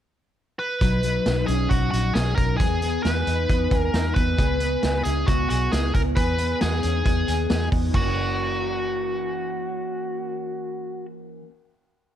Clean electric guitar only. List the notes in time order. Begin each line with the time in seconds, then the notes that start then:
0.81 F#3 D#4
1.03 F#3
1.25 D#4
1.48 C#4
1.71 F#3
1.93 D#4
2.15 C#4
2.37 F#3
2.60 B3 G#4
2.83 B3
3.05 G#4
3.27 D#4
3.50 B3
3.72 G#4
3.94 D#4
4.16 B3
4.39 B3 G#4
4.61 B3
4.84 G#4
5.06 E4
5.28 B3
5.50 G#4
5.72 E4
5.94 B3
6.16 B3 G#4
6.39 B3
6.61 F#4
6.72 G#4
6.83 C#4
6.93 D#4
7.05 B3
7.27 G#4
7.49 D#4
7.72 B3
7.90 E3
7.96 A#3
8.00 C#4
8.05 F#4